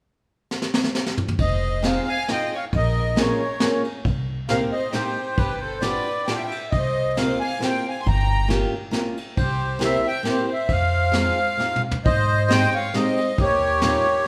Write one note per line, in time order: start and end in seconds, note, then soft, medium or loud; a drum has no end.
0.51 snare soft
0.62 snare medium
0.74 snare medium
0.84 snare medium
0.95 snare medium
1.06 snare medium
1.17 mid tom medium
1.28 mid tom medium
1.38 1.97 F1 medium
1.38 1.81 C5 medium
1.38 1.86 D#5 medium
1.38 kick medium
1.38 ride soft
1.82 2.07 C4 medium
1.82 2.07 D#4 medium
1.82 2.08 F4 medium
1.82 2.08 G#4 medium
1.82 2.07 C5 medium
1.82 2.09 F5 medium
1.82 snare medium
1.82 ride soft
2.08 2.28 F5 medium
2.08 2.29 G#5 loud
2.28 2.52 C4 medium
2.28 2.53 D#4 soft
2.28 2.53 F4 soft
2.28 2.53 G#4 soft
2.28 2.52 D#5 medium
2.28 2.55 G5 medium
2.28 snare medium
2.28 ride soft
2.55 2.64 C#5 medium
2.55 2.65 F5 medium
2.73 3.30 A#1 medium
2.73 3.15 A#4 medium
2.73 3.20 D#5 loud
2.73 kick medium
2.73 ride soft
3.16 3.40 A#3 medium
3.16 3.41 C#4 medium
3.16 3.41 F4 medium
3.16 3.42 G#4 medium
3.16 3.81 A#4 medium
3.16 snare medium
3.16 ride soft
3.20 3.82 C#5 medium
3.60 3.84 A#3 medium
3.60 3.85 C#4 medium
3.60 3.85 F4 medium
3.60 3.86 G#4 medium
3.60 snare medium
3.60 ride soft
3.84 ride soft
4.05 4.62 C2 medium
4.05 kick medium
4.05 ride soft
4.49 4.72 A#3 medium
4.49 4.72 C4 medium
4.49 4.73 D#4 medium
4.49 4.73 G4 medium
4.49 4.59 C5 medium
4.49 4.60 F5 medium
4.49 snare soft
4.49 ride soft
4.72 4.92 C5 medium
4.72 4.93 D#5 medium
4.93 5.16 A#3 medium
4.93 5.17 C4 soft
4.93 5.17 D#4 medium
4.93 5.35 G4 medium
4.93 5.18 G4 medium
4.93 5.39 C5 medium
4.93 snare soft
4.93 ride soft
5.37 5.96 G1 medium
5.37 5.60 G4 medium
5.37 5.60 B4 medium
5.37 kick medium
5.37 ride soft
5.60 5.82 A4 medium
5.60 5.82 C5 medium
5.81 6.06 B3 medium
5.81 6.06 D4 medium
5.81 6.06 F4 soft
5.81 6.07 G4 medium
5.81 6.24 B4 medium
5.81 6.28 D5 medium
5.81 snare medium
5.81 ride soft
6.26 6.51 B3 medium
6.26 6.52 D4 medium
6.26 6.52 F4 medium
6.26 6.52 G4 medium
6.26 6.36 D5 medium
6.26 6.33 G5 medium
6.26 snare soft
6.26 ride soft
6.34 6.45 E5 medium
6.34 6.43 G5 medium
6.44 6.61 E5 medium
6.44 6.60 G5 medium
6.52 ride soft
6.71 7.31 C2 medium
6.71 7.15 C5 medium
6.71 7.17 D#5 medium
6.71 kick medium
6.71 ride soft
7.17 7.41 A#3 medium
7.17 7.41 C4 medium
7.17 7.41 F4 soft
7.17 7.42 G4 medium
7.17 7.41 C5 medium
7.17 7.39 F5 medium
7.17 snare medium
7.17 ride soft
7.40 7.62 G#5 medium
7.44 7.62 F5 medium
7.59 7.84 A#3 medium
7.59 7.85 C4 soft
7.59 7.85 F4 soft
7.59 7.85 G4 medium
7.59 snare medium
7.59 ride soft
7.64 7.85 C5 medium
7.64 7.87 G5 loud
7.88 8.00 F5 medium
7.88 8.02 G#5 medium
8.01 8.07 G#5 soft
8.01 8.07 C6 medium
8.06 8.63 G1 medium
8.06 8.48 G5 medium
8.06 8.48 A#5 loud
8.06 kick medium
8.06 ride soft
8.48 8.72 A#3 medium
8.48 8.73 C#4 medium
8.48 8.73 F4 medium
8.48 8.74 G4 medium
8.48 snare medium
8.48 ride soft
8.91 9.16 A#3 medium
8.91 9.16 C#4 medium
8.91 9.17 F4 medium
8.91 9.17 G4 medium
8.91 snare soft
8.91 ride soft
9.17 ride soft
9.37 9.94 C2 medium
9.37 9.79 G4 medium
9.37 9.83 C5 medium
9.37 kick medium
9.37 ride soft
9.79 10.04 A#3 medium
9.79 10.04 C4 medium
9.79 10.04 E4 medium
9.79 10.05 G4 medium
9.79 10.04 C5 medium
9.79 snare medium
9.79 ride soft
9.84 10.06 E5 loud
10.07 10.25 E5 medium
10.07 10.27 G5 loud
10.23 10.48 A#3 medium
10.23 10.48 C4 soft
10.23 10.49 E4 soft
10.23 10.49 G4 medium
10.23 10.48 G4 medium
10.23 snare soft
10.23 ride soft
10.29 10.51 C5 medium
10.49 10.68 C5 medium
10.49 10.72 E5 medium
10.69 11.28 F2 medium
10.69 11.82 C5 medium
10.69 11.82 F5 loud
10.69 kick medium
10.69 ride soft
11.12 11.38 G#3 medium
11.12 11.38 C4 medium
11.12 11.38 D#4 medium
11.12 11.38 F4 medium
11.12 snare medium
11.12 ride soft
11.57 11.83 G#3 medium
11.57 11.84 C4 medium
11.57 11.84 D#4 soft
11.57 11.84 F4 medium
11.57 snare soft
11.76 mid tom soft
11.91 floor tom medium
12.05 12.63 G#2 loud
12.05 12.70 C5 medium
12.05 12.47 C5 medium
12.05 12.52 D#5 loud
12.05 kick medium
12.05 ride soft
12.48 12.73 G#3 medium
12.48 12.74 C4 medium
12.48 12.74 D#4 medium
12.48 12.74 G4 medium
12.48 12.73 D#5 medium
12.48 12.75 G5 loud
12.48 snare medium
12.48 ride soft
12.74 12.94 C#5 medium
12.74 12.96 F5 loud
12.94 13.18 G#3 soft
12.94 13.18 C4 medium
12.94 13.19 D#4 medium
12.94 13.19 G4 medium
12.94 13.36 C5 medium
12.94 13.41 D#5 loud
12.94 snare medium
12.94 ride soft
13.17 ride soft
13.38 13.95 D#2 medium
13.38 14.27 G4 medium
13.38 14.27 A#4 medium
13.38 14.27 C#5 medium
13.38 kick medium
13.38 ride soft
13.81 14.05 G3 medium
13.81 14.06 C#4 medium
13.81 14.06 D#4 medium
13.81 14.06 F4 medium
13.81 snare medium
13.81 ride medium